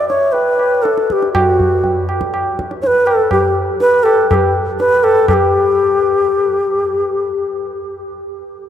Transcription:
0, 0, Header, 1, 3, 480
1, 0, Start_track
1, 0, Tempo, 493016
1, 1305, Time_signature, 4, 2, 24, 8
1, 8462, End_track
2, 0, Start_track
2, 0, Title_t, "Bansuri"
2, 0, Program_c, 0, 73
2, 84, Note_on_c, 0, 73, 103
2, 315, Note_on_c, 0, 71, 93
2, 329, Note_off_c, 0, 73, 0
2, 805, Note_on_c, 0, 69, 85
2, 820, Note_off_c, 0, 71, 0
2, 1045, Note_off_c, 0, 69, 0
2, 1045, Note_on_c, 0, 69, 80
2, 1093, Note_on_c, 0, 67, 87
2, 1103, Note_off_c, 0, 69, 0
2, 1292, Note_off_c, 0, 67, 0
2, 1298, Note_on_c, 0, 66, 79
2, 1985, Note_off_c, 0, 66, 0
2, 2746, Note_on_c, 0, 73, 98
2, 2793, Note_on_c, 0, 71, 106
2, 2802, Note_off_c, 0, 73, 0
2, 2984, Note_on_c, 0, 69, 97
2, 2999, Note_off_c, 0, 71, 0
2, 3227, Note_off_c, 0, 69, 0
2, 3235, Note_on_c, 0, 67, 75
2, 3456, Note_off_c, 0, 67, 0
2, 3707, Note_on_c, 0, 71, 116
2, 3927, Note_on_c, 0, 69, 108
2, 3942, Note_off_c, 0, 71, 0
2, 4179, Note_off_c, 0, 69, 0
2, 4184, Note_on_c, 0, 69, 72
2, 4229, Note_on_c, 0, 67, 78
2, 4238, Note_off_c, 0, 69, 0
2, 4410, Note_off_c, 0, 67, 0
2, 4668, Note_on_c, 0, 71, 110
2, 4904, Note_on_c, 0, 69, 113
2, 4919, Note_off_c, 0, 71, 0
2, 5147, Note_off_c, 0, 69, 0
2, 5152, Note_on_c, 0, 69, 84
2, 5194, Note_on_c, 0, 67, 91
2, 5204, Note_off_c, 0, 69, 0
2, 7806, Note_off_c, 0, 67, 0
2, 8462, End_track
3, 0, Start_track
3, 0, Title_t, "Tabla"
3, 96, Note_on_c, 9, 62, 67
3, 194, Note_off_c, 9, 62, 0
3, 334, Note_on_c, 9, 63, 90
3, 432, Note_off_c, 9, 63, 0
3, 577, Note_on_c, 9, 60, 64
3, 674, Note_off_c, 9, 60, 0
3, 829, Note_on_c, 9, 62, 78
3, 926, Note_off_c, 9, 62, 0
3, 948, Note_on_c, 9, 62, 72
3, 1046, Note_off_c, 9, 62, 0
3, 1071, Note_on_c, 9, 37, 60
3, 1168, Note_off_c, 9, 37, 0
3, 1192, Note_on_c, 9, 62, 70
3, 1290, Note_off_c, 9, 62, 0
3, 1312, Note_on_c, 9, 60, 118
3, 1312, Note_on_c, 9, 64, 104
3, 1409, Note_off_c, 9, 60, 0
3, 1409, Note_off_c, 9, 64, 0
3, 1554, Note_on_c, 9, 64, 83
3, 1652, Note_off_c, 9, 64, 0
3, 1788, Note_on_c, 9, 63, 79
3, 1788, Note_on_c, 9, 64, 78
3, 1885, Note_off_c, 9, 63, 0
3, 1885, Note_off_c, 9, 64, 0
3, 2033, Note_on_c, 9, 60, 69
3, 2130, Note_off_c, 9, 60, 0
3, 2150, Note_on_c, 9, 37, 67
3, 2248, Note_off_c, 9, 37, 0
3, 2275, Note_on_c, 9, 60, 88
3, 2373, Note_off_c, 9, 60, 0
3, 2521, Note_on_c, 9, 37, 63
3, 2619, Note_off_c, 9, 37, 0
3, 2639, Note_on_c, 9, 62, 64
3, 2736, Note_off_c, 9, 62, 0
3, 2759, Note_on_c, 9, 62, 81
3, 2857, Note_off_c, 9, 62, 0
3, 2989, Note_on_c, 9, 60, 78
3, 3087, Note_off_c, 9, 60, 0
3, 3221, Note_on_c, 9, 60, 102
3, 3221, Note_on_c, 9, 64, 94
3, 3318, Note_off_c, 9, 60, 0
3, 3318, Note_off_c, 9, 64, 0
3, 3703, Note_on_c, 9, 62, 80
3, 3800, Note_off_c, 9, 62, 0
3, 3947, Note_on_c, 9, 60, 82
3, 4045, Note_off_c, 9, 60, 0
3, 4194, Note_on_c, 9, 60, 114
3, 4194, Note_on_c, 9, 64, 106
3, 4291, Note_off_c, 9, 60, 0
3, 4291, Note_off_c, 9, 64, 0
3, 4673, Note_on_c, 9, 62, 85
3, 4770, Note_off_c, 9, 62, 0
3, 4904, Note_on_c, 9, 60, 78
3, 5002, Note_off_c, 9, 60, 0
3, 5144, Note_on_c, 9, 60, 116
3, 5144, Note_on_c, 9, 64, 105
3, 5242, Note_off_c, 9, 60, 0
3, 5242, Note_off_c, 9, 64, 0
3, 8462, End_track
0, 0, End_of_file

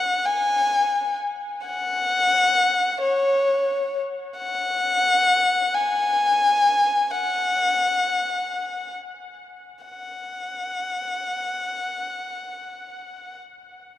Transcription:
0, 0, Header, 1, 2, 480
1, 0, Start_track
1, 0, Tempo, 916031
1, 846, Time_signature, 6, 3, 24, 8
1, 7327, End_track
2, 0, Start_track
2, 0, Title_t, "Violin"
2, 0, Program_c, 0, 40
2, 0, Note_on_c, 0, 78, 66
2, 129, Note_on_c, 0, 80, 71
2, 136, Note_off_c, 0, 78, 0
2, 607, Note_off_c, 0, 80, 0
2, 869, Note_on_c, 0, 78, 72
2, 1554, Note_off_c, 0, 78, 0
2, 1583, Note_on_c, 0, 73, 57
2, 2092, Note_off_c, 0, 73, 0
2, 2295, Note_on_c, 0, 78, 74
2, 3010, Note_on_c, 0, 80, 67
2, 3018, Note_off_c, 0, 78, 0
2, 3726, Note_on_c, 0, 78, 65
2, 3734, Note_off_c, 0, 80, 0
2, 4686, Note_off_c, 0, 78, 0
2, 5162, Note_on_c, 0, 78, 51
2, 7006, Note_off_c, 0, 78, 0
2, 7327, End_track
0, 0, End_of_file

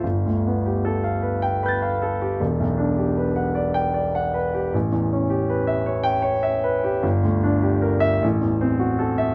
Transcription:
0, 0, Header, 1, 2, 480
1, 0, Start_track
1, 0, Tempo, 791557
1, 24, Time_signature, 6, 3, 24, 8
1, 1463, Tempo, 775194
1, 5757, End_track
2, 0, Start_track
2, 0, Title_t, "Grand piano"
2, 0, Program_c, 0, 0
2, 0, Control_c, 0, 64, 127
2, 20, Note_on_c, 0, 31, 47
2, 36, Control_c, 0, 64, 0
2, 156, Control_c, 0, 64, 127
2, 157, Note_on_c, 0, 38, 37
2, 282, Note_on_c, 0, 59, 40
2, 349, Note_off_c, 0, 38, 0
2, 400, Note_on_c, 0, 67, 41
2, 471, Note_off_c, 0, 59, 0
2, 514, Note_on_c, 0, 69, 46
2, 589, Note_off_c, 0, 67, 0
2, 630, Note_on_c, 0, 77, 44
2, 705, Note_off_c, 0, 69, 0
2, 741, Note_on_c, 0, 71, 45
2, 822, Note_off_c, 0, 77, 0
2, 863, Note_on_c, 0, 79, 55
2, 937, Note_off_c, 0, 71, 0
2, 988, Note_on_c, 0, 83, 36
2, 992, Note_on_c, 0, 71, 47
2, 1006, Note_on_c, 0, 91, 36
2, 1021, Note_on_c, 0, 93, 35
2, 1057, Note_off_c, 0, 79, 0
2, 1105, Note_on_c, 0, 77, 44
2, 1181, Note_off_c, 0, 71, 0
2, 1225, Note_on_c, 0, 69, 46
2, 1297, Note_off_c, 0, 77, 0
2, 1345, Note_on_c, 0, 67, 43
2, 1415, Note_off_c, 0, 69, 0
2, 1437, Note_off_c, 0, 31, 0
2, 1438, Note_off_c, 0, 83, 0
2, 1447, Note_off_c, 0, 91, 0
2, 1454, Note_off_c, 0, 93, 0
2, 1457, Note_on_c, 0, 28, 57
2, 1463, Note_off_c, 0, 67, 0
2, 1474, Control_c, 0, 64, 0
2, 1579, Note_on_c, 0, 35, 42
2, 1585, Control_c, 0, 64, 127
2, 1687, Note_on_c, 0, 62, 41
2, 1772, Note_off_c, 0, 35, 0
2, 1811, Note_on_c, 0, 67, 39
2, 1886, Note_off_c, 0, 62, 0
2, 1934, Note_on_c, 0, 71, 44
2, 2009, Note_off_c, 0, 67, 0
2, 2049, Note_on_c, 0, 78, 42
2, 2130, Note_off_c, 0, 71, 0
2, 2166, Note_on_c, 0, 74, 47
2, 2248, Note_off_c, 0, 78, 0
2, 2287, Note_on_c, 0, 79, 59
2, 2367, Note_off_c, 0, 74, 0
2, 2408, Note_on_c, 0, 74, 48
2, 2487, Note_off_c, 0, 79, 0
2, 2539, Note_on_c, 0, 78, 47
2, 2608, Note_off_c, 0, 74, 0
2, 2657, Note_on_c, 0, 71, 49
2, 2734, Note_off_c, 0, 78, 0
2, 2782, Note_on_c, 0, 67, 44
2, 2852, Note_off_c, 0, 71, 0
2, 2876, Note_off_c, 0, 28, 0
2, 2901, Note_on_c, 0, 33, 53
2, 2903, Note_off_c, 0, 67, 0
2, 2915, Control_c, 0, 64, 0
2, 2998, Control_c, 0, 64, 127
2, 3016, Note_on_c, 0, 40, 42
2, 3144, Note_on_c, 0, 61, 44
2, 3209, Note_off_c, 0, 40, 0
2, 3250, Note_on_c, 0, 67, 46
2, 3332, Note_off_c, 0, 61, 0
2, 3372, Note_on_c, 0, 71, 47
2, 3444, Note_off_c, 0, 67, 0
2, 3482, Note_on_c, 0, 76, 50
2, 3563, Note_off_c, 0, 71, 0
2, 3599, Note_on_c, 0, 73, 48
2, 3677, Note_off_c, 0, 76, 0
2, 3706, Note_on_c, 0, 79, 66
2, 3794, Note_off_c, 0, 73, 0
2, 3822, Note_on_c, 0, 73, 53
2, 3908, Note_off_c, 0, 79, 0
2, 3950, Note_on_c, 0, 76, 53
2, 4027, Note_off_c, 0, 73, 0
2, 4079, Note_on_c, 0, 71, 51
2, 4152, Note_off_c, 0, 76, 0
2, 4205, Note_on_c, 0, 67, 49
2, 4278, Note_off_c, 0, 71, 0
2, 4305, Note_off_c, 0, 33, 0
2, 4322, Note_on_c, 0, 31, 63
2, 4328, Note_off_c, 0, 67, 0
2, 4342, Control_c, 0, 64, 0
2, 4434, Control_c, 0, 64, 127
2, 4447, Note_on_c, 0, 38, 44
2, 4571, Note_on_c, 0, 62, 47
2, 4644, Note_off_c, 0, 38, 0
2, 4691, Note_on_c, 0, 67, 46
2, 4768, Note_off_c, 0, 62, 0
2, 4811, Note_on_c, 0, 70, 53
2, 4891, Note_off_c, 0, 67, 0
2, 4925, Note_on_c, 0, 76, 69
2, 5014, Note_off_c, 0, 70, 0
2, 5040, Note_off_c, 0, 31, 0
2, 5058, Note_off_c, 0, 76, 0
2, 5060, Note_on_c, 0, 33, 60
2, 5079, Control_c, 0, 64, 0
2, 5164, Control_c, 0, 64, 127
2, 5177, Note_on_c, 0, 40, 45
2, 5301, Note_on_c, 0, 60, 52
2, 5375, Note_off_c, 0, 40, 0
2, 5414, Note_on_c, 0, 66, 48
2, 5495, Note_off_c, 0, 60, 0
2, 5535, Note_on_c, 0, 69, 54
2, 5609, Note_off_c, 0, 66, 0
2, 5653, Note_on_c, 0, 76, 59
2, 5730, Note_off_c, 0, 69, 0
2, 5757, Note_off_c, 0, 33, 0
2, 5757, Note_off_c, 0, 76, 0
2, 5757, End_track
0, 0, End_of_file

